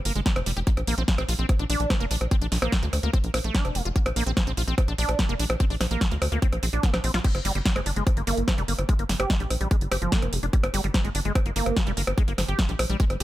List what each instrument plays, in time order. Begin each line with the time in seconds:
0.05 analog synth bass G1, acid bass A#3, open hi-hat
0.16 analog synth bass G1, acid bass G#3, closed hi-hat
0.26 acid bass A#3, kick, snare, closed hi-hat
0.36 analog synth bass F1, closed hi-hat, percussion blips
0.46 analog synth bass F1, acid bass G3, open hi-hat
0.57 analog synth bass F1, acid bass G4, closed hi-hat
0.67 acid bass A#3, kick, closed hi-hat
0.77 analog synth bass A#1, closed hi-hat, percussion blips
0.87 analog synth bass A#1, acid bass A#3, open hi-hat
0.98 analog synth bass A#1, acid bass C4, closed hi-hat
1.08 kick, snare, closed hi-hat
1.18 analog synth bass A#1, acid bass C4, closed hi-hat, percussion blips
1.29 analog synth bass A#1, acid bass F4, open hi-hat
1.39 analog synth bass A#1, acid bass C4, closed hi-hat
1.49 kick, closed hi-hat, percussion blips
1.59 analog synth bass A#1, acid bass D4, closed hi-hat
1.70 analog synth bass A#1, acid bass D4, open hi-hat
1.80 analog synth bass A#1, closed hi-hat
1.90 acid bass A3, kick, snare, closed hi-hat, percussion blips
2.00 analog synth bass F1, acid bass A#3, closed hi-hat
2.11 analog synth bass A#1, acid bass D4, open hi-hat
2.21 analog synth bass A#1, closed hi-hat, percussion blips
2.31 acid bass C4, kick, closed hi-hat
2.42 analog synth bass A#1, acid bass D4, closed hi-hat
2.52 analog synth bass A#1, snare, open hi-hat
2.62 analog synth bass A#1, acid bass A#3, closed hi-hat, percussion blips
2.72 acid bass A3, kick, snare, closed hi-hat
2.83 analog synth bass D2, acid bass A#3, closed hi-hat
2.93 analog synth bass D2, open hi-hat, percussion blips
3.03 analog synth bass D2, acid bass A#3, closed hi-hat
3.13 acid bass C4, kick, closed hi-hat
3.24 analog synth bass A#1, closed hi-hat
3.34 analog synth bass A#1, acid bass A#3, open hi-hat, percussion blips
3.44 analog synth bass A#1, acid bass A3, closed hi-hat
3.55 acid bass D4, kick, snare, closed hi-hat
3.65 analog synth bass F1, closed hi-hat, percussion blips
3.75 analog synth bass F1, acid bass A#3, open hi-hat
3.85 analog synth bass F1, acid bass F4, closed hi-hat
3.96 acid bass A#3, kick, closed hi-hat
4.06 analog synth bass A#1, closed hi-hat, percussion blips
4.16 analog synth bass A#1, acid bass A#3, open hi-hat
4.26 analog synth bass A#1, acid bass C4, closed hi-hat
4.37 kick, snare, closed hi-hat, percussion blips
4.47 analog synth bass A#1, acid bass C4, closed hi-hat
4.57 analog synth bass A#1, acid bass F4, open hi-hat
4.68 analog synth bass A#1, acid bass C4, closed hi-hat
4.78 kick, closed hi-hat, percussion blips
4.88 analog synth bass A#1, acid bass D4, closed hi-hat
4.98 analog synth bass A#1, acid bass D4, open hi-hat
5.09 analog synth bass A#1, closed hi-hat, percussion blips
5.19 acid bass A3, kick, snare, closed hi-hat
5.29 analog synth bass F1, acid bass A#3, closed hi-hat
5.39 analog synth bass A#1, acid bass D4, open hi-hat
5.50 analog synth bass A#1, closed hi-hat, percussion blips
5.60 acid bass C4, kick, closed hi-hat
5.70 analog synth bass A#1, acid bass D4, open hi-hat
5.81 analog synth bass A#1, snare, open hi-hat, percussion blips
5.91 analog synth bass A#1, acid bass A#3, closed hi-hat
6.01 acid bass A3, kick, snare, closed hi-hat
6.11 analog synth bass D2, acid bass A#3, closed hi-hat
6.22 analog synth bass D2, open hi-hat, percussion blips
6.32 analog synth bass D2, acid bass A#3, closed hi-hat
6.42 acid bass C4, kick, closed hi-hat
6.53 analog synth bass A#1, closed hi-hat, percussion blips
6.63 analog synth bass A#1, acid bass C4, open hi-hat
6.73 analog synth bass A#1, acid bass D4, closed hi-hat
6.83 acid bass A#3, kick, snare, closed hi-hat
6.94 analog synth bass A#1, snare, closed hi-hat, percussion blips
7.04 analog synth bass A#1, acid bass C4, open hi-hat
7.14 analog synth bass A#1, acid bass F4, snare, closed hi-hat
7.24 acid bass G3, kick, closed hi-hat, crash
7.35 analog synth bass G1, closed hi-hat, percussion blips
7.45 analog synth bass G1, acid bass G3, open hi-hat
7.55 analog synth bass G1, acid bass G3, closed hi-hat
7.66 kick, snare, closed hi-hat
7.76 analog synth bass G1, acid bass G#3, closed hi-hat, percussion blips
7.86 analog synth bass G1, acid bass D4, open hi-hat
7.96 analog synth bass G1, acid bass G#3, closed hi-hat
8.07 kick, closed hi-hat, percussion blips
8.17 analog synth bass G1, acid bass A#3, closed hi-hat
8.27 analog synth bass G1, acid bass A#3, open hi-hat
8.37 analog synth bass G1, closed hi-hat
8.48 acid bass F3, kick, snare, closed hi-hat, percussion blips
8.58 analog synth bass F1, acid bass G3, closed hi-hat
8.68 analog synth bass G1, acid bass A#3, open hi-hat
8.79 analog synth bass G1, closed hi-hat, percussion blips
8.89 acid bass G#3, kick, closed hi-hat
8.99 analog synth bass G1, acid bass A#3, closed hi-hat
9.09 analog synth bass G1, snare, open hi-hat
9.20 analog synth bass G1, acid bass G4, closed hi-hat, percussion blips
9.30 acid bass F3, kick, snare, closed hi-hat
9.40 analog synth bass A#1, acid bass G3, closed hi-hat
9.50 analog synth bass A#1, open hi-hat, percussion blips
9.61 analog synth bass A#1, acid bass G3, closed hi-hat
9.71 acid bass G#3, kick, closed hi-hat
9.81 analog synth bass G1, closed hi-hat
9.92 analog synth bass G1, acid bass G4, open hi-hat, percussion blips
10.02 analog synth bass G1, acid bass F3, closed hi-hat
10.12 acid bass A#3, kick, snare, closed hi-hat
10.22 analog synth bass F1, closed hi-hat, percussion blips
10.33 analog synth bass F1, acid bass G3, open hi-hat
10.43 analog synth bass F1, acid bass D4, closed hi-hat
10.53 acid bass G3, kick, closed hi-hat
10.63 analog synth bass G1, closed hi-hat, percussion blips
10.74 analog synth bass G1, acid bass G3, open hi-hat
10.84 analog synth bass G1, acid bass G3, closed hi-hat
10.94 kick, snare, closed hi-hat, percussion blips
11.05 analog synth bass G1, acid bass G#3, closed hi-hat
11.15 analog synth bass G1, acid bass D4, open hi-hat
11.25 analog synth bass G1, acid bass G#3, closed hi-hat
11.35 kick, closed hi-hat, percussion blips
11.46 analog synth bass G1, acid bass A#3, closed hi-hat
11.56 analog synth bass G1, acid bass A#3, open hi-hat
11.66 analog synth bass G1, closed hi-hat, percussion blips
11.77 acid bass F3, kick, snare, closed hi-hat
11.87 analog synth bass F1, acid bass G3, closed hi-hat
11.97 analog synth bass G1, acid bass A#3, open hi-hat
12.07 analog synth bass G1, closed hi-hat, percussion blips
12.18 acid bass G#3, kick, closed hi-hat
12.28 analog synth bass G1, acid bass A#3, closed hi-hat
12.38 analog synth bass G1, snare, open hi-hat, percussion blips
12.48 analog synth bass G1, acid bass G4, closed hi-hat
12.59 acid bass F3, kick, snare, closed hi-hat
12.69 analog synth bass A#1, acid bass G3, closed hi-hat
12.79 analog synth bass A#1, open hi-hat, percussion blips
12.90 analog synth bass A#1, acid bass G3, closed hi-hat
13.00 acid bass G#3, kick, closed hi-hat
13.10 analog synth bass G1, closed hi-hat, percussion blips